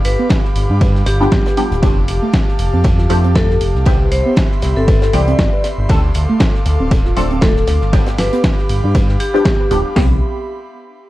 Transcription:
Already playing: synth stab F3 G3 B3 D4 G4, analog synth pad G4 F5 B5 D6
0.05 analog synth bass G1, vibraphone B4, closed hi-hat, open hi-hat
0.19 synth arpeggio sound B3
0.30 kick, snare, closed hi-hat, ride
0.45 snare
0.56 analog synth bass G1, closed hi-hat, open hi-hat
0.70 analog synth bass G2, synth arpeggio sound D4
0.81 synth arpeggio sound B4, kick, closed hi-hat, ride
0.95 synth arpeggio sound G4, snare
1.06 analog synth bass G1, vibraphone G4, snare, closed hi-hat, open hi-hat
1.20 synth stab F3 G3 B3 D4 G4, synth arpeggio sound D4, snare
1.31 analog synth bass G2, synth arpeggio sound B3, kick, snare, closed hi-hat, ride
1.46 synth arpeggio sound B4, snare, closed hi-hat
1.57 synth stab F3 G3 B3 D4 G4, snare, open hi-hat
1.71 analog synth bass D1, snare, closed hi-hat
1.82 analog synth bass F1, synth stab F3 A3 C4 D4 G4, analog synth pad F5 A5, kick, closed hi-hat, ride
2.08 analog synth bass F1, closed hi-hat, open hi-hat
2.22 synth arpeggio sound A3
2.33 kick, snare, closed hi-hat, ride
2.48 snare
2.59 analog synth bass F1, closed hi-hat, open hi-hat
2.73 analog synth bass F2, synth arpeggio sound C4
2.84 synth arpeggio sound G4, kick, closed hi-hat, ride
2.98 synth arpeggio sound F4, snare
3.09 analog synth bass F2, synth stab F3 A3 C4 D4 G4, closed hi-hat, open hi-hat
3.24 synth arpeggio sound C4, closed hi-hat
3.35 synth arpeggio sound A3, vibraphone A4, kick, snare, closed hi-hat, ride
3.49 synth arpeggio sound G4, snare
3.61 analog synth bass F1, closed hi-hat, open hi-hat
3.75 analog synth bass C2, snare
3.85 synth stab E3 G3 B3 C4 G4, analog synth pad E5 B5 C6, kick, closed hi-hat, ride
4.12 analog synth bass C2, vibraphone C5, closed hi-hat, open hi-hat
4.26 synth arpeggio sound B3
4.36 kick, snare, closed hi-hat, ride
4.51 snare
4.62 analog synth bass C2, snare, closed hi-hat, open hi-hat
4.76 analog synth bass G1, synth arpeggio sound C4, vibraphone A4, snare
4.88 synth arpeggio sound B4, kick, closed hi-hat, ride
5.02 synth arpeggio sound G4, snare, closed hi-hat
5.13 analog synth bass C2, synth stab E3 G3 B3 C4 G4, vibraphone D5, snare, open hi-hat
5.27 synth arpeggio sound C4, closed hi-hat
5.39 analog synth bass G1, synth arpeggio sound B3, kick, snare, closed hi-hat, ride
5.53 synth arpeggio sound B4
5.64 snare, closed hi-hat, open hi-hat
5.78 analog synth bass G1
5.89 analog synth bass D2, synth stab F3 A3 C4 D4 A4, analog synth pad A4 F5 D6, kick, closed hi-hat, ride
6.14 analog synth bass D2, closed hi-hat, open hi-hat
6.29 synth arpeggio sound A3
6.40 kick, snare, closed hi-hat, ride
6.55 snare
6.66 analog synth bass D2, snare, closed hi-hat, open hi-hat
6.80 analog synth bass D1, synth arpeggio sound C4
6.91 synth arpeggio sound A4, kick, closed hi-hat, ride
7.05 synth arpeggio sound F4, snare
7.16 analog synth bass D1, synth stab F3 A3 C4 D4 A4, closed hi-hat, open hi-hat
7.30 synth arpeggio sound C4, closed hi-hat
7.41 synth arpeggio sound A3, vibraphone A4, kick, snare, closed hi-hat, ride
7.56 synth arpeggio sound A4, snare
7.67 analog synth bass D2, snare, closed hi-hat, open hi-hat
7.81 analog synth bass G1, snare
7.92 synth stab F3 G3 B3 D4 G4, analog synth pad G4 B5, kick, snare, closed hi-hat, ride
8.06 snare, closed hi-hat
8.18 analog synth bass G1, vibraphone B4, snare, open hi-hat
8.32 synth arpeggio sound B3, snare, closed hi-hat
8.44 kick, snare, closed hi-hat, ride
8.58 snare
8.69 analog synth bass G1, closed hi-hat, open hi-hat
8.83 analog synth bass G2, synth arpeggio sound D4
8.95 synth arpeggio sound B4, kick, closed hi-hat, ride
9.09 synth arpeggio sound G4, snare
9.20 vibraphone G4, closed hi-hat, open hi-hat
9.34 synth stab F3 G3 B3 D4 G4, synth arpeggio sound D4, closed hi-hat
9.45 synth arpeggio sound B3, kick, snare, closed hi-hat, ride
9.60 synth arpeggio sound B4
9.71 analog synth bass D1, synth stab F3 G3 B3 D4 G4, closed hi-hat, open hi-hat
9.96 analog synth bass C2, synth stab E3 G3 B3 C4 G4, synth arpeggio sound B3, analog synth pad G4 E5 B5 C6, kick, snare, open hi-hat

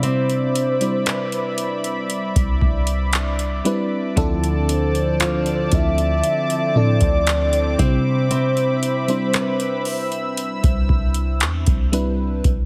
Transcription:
Already playing: 808-style bass C3, fm electric piano G3 C4 D4 E4 C5, analog synth pad D5 E5 B5 D6
0.03 steel-string acoustic guitar C4, soft synth lead C5, closed hi-hat
0.30 closed hi-hat
0.56 closed hi-hat
0.81 fm electric piano G3 C4 D4 E4 C5, closed hi-hat
1.06 steel-string acoustic guitar B4, clap, closed hi-hat
1.32 closed hi-hat
1.58 closed hi-hat
1.84 closed hi-hat
2.10 closed hi-hat
2.36 808-style bass C2, kick, closed hi-hat
2.62 808-style bass C2, kick
2.87 closed hi-hat
3.13 clap, closed hi-hat
3.39 closed hi-hat
3.65 fm electric piano G3 C4 D4 E4 B4, closed hi-hat
4.16 808-style bass D2, steel-string acoustic guitar D3, fm electric piano F3 C4 D4 E4 A4, analog synth pad C4 D5 A5 D6, kick, closed hi-hat
4.44 closed hi-hat
4.69 soft synth lead C5, closed hi-hat
4.95 closed hi-hat
5.20 steel-string acoustic guitar F4, clap, closed hi-hat
5.46 closed hi-hat
5.72 808-style bass D2, fm electric piano F3 C4 D4 E4 A4, soft synth lead E5, kick, closed hi-hat
5.98 closed hi-hat
6.24 closed hi-hat
6.50 closed hi-hat
6.75 808-style bass A2, fm electric piano F3 C4 D4 E4 A4, soft synth lead D5
7.01 808-style bass D2, kick, closed hi-hat
7.27 clap, closed hi-hat
7.53 closed hi-hat
7.78 808-style bass C3, fm electric piano G3 C4 D4 E4 C5, steel-string acoustic guitar C4, soft synth lead C5, analog synth pad E5 B5, kick, closed hi-hat
8.31 steel-string acoustic guitar C4, closed hi-hat
8.57 closed hi-hat
8.83 closed hi-hat
9.08 fm electric piano G3 C4 D4 E4 C5, closed hi-hat
9.34 steel-string acoustic guitar B4, clap, closed hi-hat
9.60 closed hi-hat
9.85 analog synth pad E6, open hi-hat
10.12 closed hi-hat
10.37 closed hi-hat
10.64 808-style bass C2, kick, closed hi-hat
10.89 808-style bass C2, kick
11.14 closed hi-hat
11.40 808-style bass E2, clap, closed hi-hat
11.66 808-style bass C2, kick, closed hi-hat
11.92 fm electric piano G3 C4 D4 E4 B4, closed hi-hat
12.44 808-style bass C2, kick, closed hi-hat

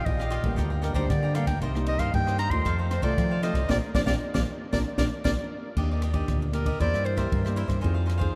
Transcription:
0.06 fingered electric bass A#1, nylon-string guitar A#2 A#3 F4 G4, clarinet D#5, kick, ride
0.19 cavaquinho G4 D#5 F5, cross-stick
0.30 cavaquinho F4 G4 D#5 F5, cross-stick, ride
0.42 fingered electric bass A1, nylon-string guitar D3 G3 A#3 D4, kick, ride
0.47 nylon-string guitar G4
0.56 fingered electric bass D2, nylon-string guitar G2, cavaquinho A4 D5 G5 A#5, kick, cross-stick, ride
0.70 cavaquinho D5 G5 A#5
0.82 cavaquinho A4 D5 G5 A#5, clarinet A#4, cross-stick, ride
0.94 fingered electric bass D2, nylon-string guitar D3 G3 A#3, cavaquinho A4 D5 G5 A#5, clarinet C5, kick, ride
0.98 nylon-string guitar D4 G4
1.10 nylon-string guitar G2, fingered electric bass D3, clarinet D5, kick, cross-stick, ride
1.23 cavaquinho D5 G5 A#5
1.35 nylon-string guitar D3 G3 A#3 D4 G4, cavaquinho A4 D5 G5 A#5, clarinet F5, cross-stick, ride
1.46 fingered electric bass D2, cavaquinho D5 G5 A#5, clarinet G5, kick, cross-stick, ride
1.62 fingered electric bass C2, nylon-string guitar C3 A#3 D#4 G4, cavaquinho D#4 A#4 C5 D#5, kick, ride
1.75 nylon-string guitar A#3 D#4 G4, cross-stick
1.86 cavaquinho D#4 A#4 C5 D#5, clarinet D#5, ride
1.97 fingered electric bass G2, cavaquinho D#4 A#4 C5 D#5, clarinet F5, kick, cross-stick, ride
2.14 fingered electric bass G2, nylon-string guitar G2 A#3 D#4 G4, clarinet G5, kick, ride
2.27 cavaquinho A#4 C5 D#5, cross-stick
2.38 cavaquinho D#4 A#4 C5 D#5, clarinet A#5, cross-stick, ride
2.49 fingered electric bass D#2, nylon-string guitar A3 C4 F4, clarinet C6, kick, ride
2.65 fingered electric bass F2, nylon-string guitar F3, cavaquinho F4 A4 C5 F5, kick, cross-stick, ride
2.78 cavaquinho A4 C5 F5
2.91 cavaquinho F4 A4 C5 F5, clarinet C5, cross-stick, ride
3.01 fingered electric bass C2, nylon-string guitar A3 C4 F4, cavaquinho F4 A4 C5 F5, clarinet D5, kick, ride
3.18 nylon-string guitar C3, fingered electric bass F3, kick, cross-stick, ride
3.31 cavaquinho A4 C5 F5
3.42 nylon-string guitar A3 C4 F4, cavaquinho F4 A4 C5 F5, clarinet D#5, cross-stick, ride
3.53 fingered electric bass C2, cavaquinho A4 C5 F5, kick, cross-stick, ride
3.69 fingered electric bass A#1, nylon-string guitar F3 A#3 D4, cavaquinho A#4 D5 F5, clarinet D5, kick, snare
3.94 fingered electric bass A#1, nylon-string guitar F3 A#3 D4, cavaquinho A#4 D5 F5, clarinet D5, kick, snare
4.06 fingered electric bass A#1, nylon-string guitar F3 A#3 D4, cavaquinho A#4 D5 F5, clarinet D5, kick, snare
4.34 fingered electric bass A#1, nylon-string guitar F3 A#3 D4, cavaquinho A#4 D5 F5, clarinet D5, kick, snare
4.72 fingered electric bass A#1, nylon-string guitar F3 A#3 D4, cavaquinho A#4 D5 F5, clarinet D5, kick, snare
4.97 fingered electric bass A#1, nylon-string guitar F3 A#3 D4, cavaquinho A#4 D5 F5, clarinet D5, kick, snare
5.24 fingered electric bass A#1, nylon-string guitar F3 A#3 D4, cavaquinho A#4 D5 F5, clarinet D5, kick, snare
5.76 fingered electric bass D#2, nylon-string guitar D#3 A#3 D4 G4, cavaquinho D4 G4 D5 D#5, kick, crash
5.91 cavaquinho G4 D5 D#5
6.02 cavaquinho D4 G4 D5 D#5, cross-stick, ride
6.13 nylon-string guitar A#3 D4 G4, cavaquinho G4 D5 D#5, kick, ride
6.28 fingered electric bass D2, nylon-string guitar A#2, kick, cross-stick, ride
6.42 muted cavaquinho stroke
6.53 nylon-string guitar A#3 D4 G4, cavaquinho D4 G4 D5 D#5, clarinet A#4, cross-stick, ride
6.66 cavaquinho G4 D5 D#5, kick, ride
6.80 fingered electric bass E2, nylon-string guitar E3 A#3 C4 G4, cavaquinho E4 A#4 C5 E5, clarinet D5, kick, ride
6.94 fingered electric bass G2, cavaquinho A#4 C5 E5, cross-stick
7.04 clarinet C5, muted cavaquinho stroke, ride
7.17 nylon-string guitar A#3 C4 G4, cavaquinho A#4 C5 E5, clarinet A#4, kick, cross-stick, ride
7.32 fingered electric bass G2, nylon-string guitar E3, kick, ride
7.45 nylon-string guitar A#3 C4 G4, cavaquinho A#4 C5 E5, cross-stick
7.56 cavaquinho E4 A#4 C5 E5, ride
7.67 fingered electric bass G2, cavaquinho A#4 C5 E5, kick, cross-stick, ride
7.81 fingered electric bass F2, nylon-string guitar F3 C4 D#4 G#4, cavaquinho D#4 G#4 C5 F5, kick, ride
7.94 cavaquinho G#4 C5 F5
8.06 cavaquinho D#4 G#4 C5 F5, cross-stick, ride
8.18 nylon-string guitar C4 D#4, cavaquinho G#4 C5 F5, kick, ride
8.22 nylon-string guitar G#4

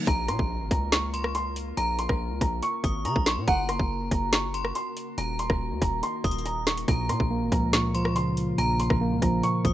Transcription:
0.07 808-style bass A#1, ambient pad C#3 A#3 F4 A#4, grand piano A#5, synth bell A#5, kick, closed hi-hat, impact
0.28 808-style bass A#2, grand piano C6, cross-stick, closed hi-hat
0.39 808-style bass A#1, kick
0.60 808-style bass G#1
0.71 808-style bass C#2, grand piano A#5, kick, closed hi-hat
0.92 grand piano C#6, snare, closed hi-hat
1.14 synth bell C6, closed hi-hat
1.24 cross-stick
1.35 grand piano C6, closed hi-hat
1.56 closed hi-hat
1.77 808-style bass A#1, synth bell A#5, grand piano A#5, closed hi-hat
1.99 grand piano C6, closed hi-hat
2.09 808-style bass A#1, kick, cross-stick
2.31 808-style bass C#2
2.41 808-style bass A#1, grand piano A#5, kick, cross-stick, closed hi-hat
2.62 grand piano C#6, closed hi-hat
2.84 808-style bass G#1, synth bell D#6, kick, closed hi-hat
3.05 808-style bass C#3, grand piano A#5, synth bell C#6, closed hi-hat
3.16 808-style bass A#1, kick
3.26 synth bell C6, grand piano C#6, snare, closed hi-hat
3.37 808-style bass A#2
3.48 808-style bass F#1, ambient pad C#3 F#4, grand piano F#5, synth bell A#5, kick, closed hi-hat
3.69 grand piano C6, cross-stick, closed hi-hat
3.79 808-style bass F#1, kick
4.11 808-style bass F#1, grand piano A#5, kick, closed hi-hat
4.33 grand piano C#6, snare, closed hi-hat
4.54 synth bell C6, closed hi-hat
4.65 cross-stick
4.75 grand piano C6, closed hi-hat
4.97 closed hi-hat
5.18 808-style bass D#1, ambient pad D#3 A#3 A#4, synth bell A#5, grand piano A#5, closed hi-hat
5.39 grand piano C6, closed hi-hat
5.50 808-style bass D#1, kick, cross-stick
5.71 808-style bass D#2
5.82 808-style bass D#1, grand piano A#5, kick, closed hi-hat
6.03 grand piano C6, closed hi-hat
6.24 808-style bass D#1, synth bell D#6, kick, closed hi-hat
6.31 closed hi-hat
6.38 closed hi-hat
6.46 grand piano A#5, closed hi-hat
6.67 grand piano C#6, snare, closed hi-hat
6.77 closed hi-hat
6.88 808-style bass A#1, tine electric piano A#2, ambient pad C#3 F4, synth bell A#5, grand piano A#5, kick, closed hi-hat
7.09 808-style bass A#2, grand piano C6, cross-stick, closed hi-hat
7.20 808-style bass A#1, kick
7.31 tine electric piano A#3
7.41 808-style bass G#1
7.52 808-style bass C#2, tine electric piano F3, grand piano A#5, kick, closed hi-hat
7.73 tine electric piano A#2, grand piano C#6, snare, closed hi-hat
7.94 tine electric piano F3, synth bell C6, closed hi-hat
8.05 cross-stick
8.16 tine electric piano C#3, grand piano C6, closed hi-hat
8.37 closed hi-hat
8.58 808-style bass A#1, tine electric piano A#2, synth bell A#5, grand piano A#5, closed hi-hat
8.80 grand piano C6, closed hi-hat
8.90 808-style bass A#1, kick, cross-stick
9.01 tine electric piano A#3
9.11 808-style bass C#2
9.22 808-style bass A#1, tine electric piano F3, grand piano A#5, kick, cross-stick, closed hi-hat
9.43 tine electric piano A#2, grand piano C#6, closed hi-hat
9.65 808-style bass G#1, tine electric piano F3, synth bell D#6, kick, closed hi-hat

